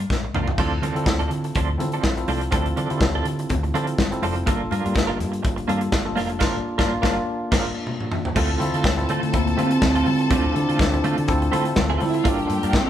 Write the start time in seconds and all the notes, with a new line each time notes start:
0.10 A#1, kick, snare, high conga
0.25 muted clean electric guitar stroke
0.34 C2 A#3 D4 F4 A#4, mid tom, high conga
0.48 muted clean electric guitar stroke, floor tom
0.57 D2 F3 C4 D4 E4 F4 A4, kick, crash, muted conga
0.82 D3 F3 C4 D4 A4, closed hi-hat, muted conga
0.95 D3 F3 C4 D4 E4 F4 A4, closed hi-hat
1.05 D2, muted clean electric guitar stroke, kick, snare, high conga
1.19 F3 C4 D4 A4, closed hi-hat
1.30 D3, muted clean electric guitar stroke, closed hi-hat
1.44 muted clean electric guitar stroke, closed hi-hat
1.55 D2 F3 C4 D4 A4, kick, closed hi-hat
1.70 muted clean electric guitar stroke
1.78 D3 C4 E4 F4 A4, muted clean electric guitar stroke, closed hi-hat, muted conga, low conga
1.92 F3 C4 D4 A4, closed hi-hat
2.03 A#1, kick, snare, high conga
2.17 C4 E4 F4 A4, muted clean electric guitar stroke, closed hi-hat
2.28 C2 F3 C4 D4 A4, open hi-hat, high conga
2.41 muted clean electric guitar stroke, closed hi-hat
2.51 D2 F3 C4 D4 E4 F4 A4, kick, closed hi-hat, muted conga
2.66 closed hi-hat
2.76 D3 F3 C4 D4 A4, closed hi-hat, muted conga
2.90 D3 C4 D4 E4 F4 G4 A4, closed hi-hat
2.97 D2 A4, muted clean electric guitar stroke, kick, high conga
3.02 snare
3.15 F3 C4 D4 A4
3.25 D3, muted clean electric guitar stroke, closed hi-hat
3.39 muted clean electric guitar stroke, closed hi-hat
3.49 D2, muted clean electric guitar stroke, kick, closed hi-hat, low conga
3.63 muted clean electric guitar stroke, closed hi-hat
3.74 D3 F3 C4 D4 E4 F4 A4, closed hi-hat, muted conga
3.87 muted clean electric guitar stroke, closed hi-hat
3.98 G1, kick, snare, high conga
4.11 C4 E4 F4 A4, muted clean electric guitar stroke, closed hi-hat
4.22 F1 F3 C4 D4 A4, open hi-hat, high conga
4.36 muted clean electric guitar stroke, closed hi-hat
4.46 G1 A#3 D4 F4 A4 A#4, kick, closed hi-hat, muted conga
4.71 G2 A#3 D4 F4 A#4, closed hi-hat, muted conga
4.84 G2 A#3 D4 F4 G4 A#4, closed hi-hat
4.94 G1, muted clean electric guitar stroke, kick, snare, high conga
5.07 A#3 D4 F4 A#4
5.18 G2, muted clean electric guitar stroke, closed hi-hat
5.32 muted clean electric guitar stroke, closed hi-hat
5.43 G1, muted clean electric guitar stroke, kick, closed hi-hat
5.56 muted clean electric guitar stroke, closed hi-hat
5.67 G2 A#3 D4 F4 A4 A#4, closed hi-hat, muted conga, low conga
5.81 muted clean electric guitar stroke, closed hi-hat
5.92 G1, kick, snare, high conga
6.05 A#3 D4 F4 A4, muted clean electric guitar stroke
6.16 F1 A#3 D4 F4 A#4, snare, open hi-hat, high conga
6.30 muted clean electric guitar stroke, closed hi-hat
6.39 G1 A#3 D4 F4 A#4, kick, snare, crash
6.78 G1 A#3 D4 F4 A#4, kick, snare
7.02 G1 A#3 D4 F4 A#4, kick, snare
7.52 G1 A#3 D4 F4 A#4, kick, snare, crash
7.87 high tom
8.00 mid tom
8.12 mid tom
8.25 floor tom
8.34 D2 A3 C4 E4 F4 A4 A5, kick, crash, muted conga
8.59 D3 C4 E4 F4 A4, muted clean electric guitar stroke, closed hi-hat, muted conga
8.74 D3 A3 C4 F4 A4, closed hi-hat
8.84 D2, kick, snare, high conga
8.97 C4 E4 F4 A4, muted clean electric guitar stroke, closed hi-hat
9.09 D3 A3 C4 F4 A4, closed hi-hat
9.23 D3, muted clean electric guitar stroke, closed hi-hat
9.32 D2 A#3 C4 E4 F4 A4, muted clean electric guitar stroke, kick, closed hi-hat, muted conga
9.47 muted clean electric guitar stroke, closed hi-hat
9.56 D3 A3 C4 E4 F4 G4 A4, closed hi-hat, muted conga, low conga
9.64 A4
9.71 muted clean electric guitar stroke, closed hi-hat
9.82 D2, muted clean electric guitar stroke, kick, snare, high conga
9.95 A3 C4 F4 A4, closed hi-hat
10.05 D3 C4 E4 F4 A4, muted clean electric guitar stroke, open hi-hat, high conga
10.19 muted clean electric guitar stroke, closed hi-hat
10.30 D2 A3 C4 D4 E4 F4 A4 C5, kick, closed hi-hat, muted conga
10.54 D3 C4 D4 E4 F4 A4, muted clean electric guitar stroke, closed hi-hat, muted conga
10.69 D3 A3 C4 F4 A4, closed hi-hat
10.79 D2, kick, snare, high conga
10.92 C4 E4 F4 A4, muted clean electric guitar stroke, closed hi-hat
11.04 D3 A3 C4 F4 A4, closed hi-hat
11.17 D3, muted clean electric guitar stroke, closed hi-hat
11.28 D2 C4 E4 F4 A4, muted clean electric guitar stroke, kick, closed hi-hat, low conga
11.42 muted clean electric guitar stroke, closed hi-hat
11.51 D3 A3 C4 E4 F4 A4, closed hi-hat, muted conga
11.65 muted clean electric guitar stroke, closed hi-hat
11.76 D2 A3 A4, muted clean electric guitar stroke, kick, snare, high conga
11.84 A#3 A#4
11.90 A3 C4 F4 A4 C5
12.00 D3 C4 D4 E4 F4 A4 D5, muted clean electric guitar stroke, open hi-hat, high conga
12.09 E4 E5
12.14 F4 F5, muted clean electric guitar stroke, closed hi-hat
12.23 G1 A#3 D4 F4 G4 A4 A#4 G5, kick, closed hi-hat
12.28 D4, muted conga
12.39 closed hi-hat
12.47 G2 A#3 D4 F4 A4, muted clean electric guitar stroke, closed hi-hat, muted conga
12.63 G2 A#3 D4 F4 A#4, closed hi-hat
12.73 G1, kick, snare, high conga
12.78 C4
12.85 A#3 D4 F4 A4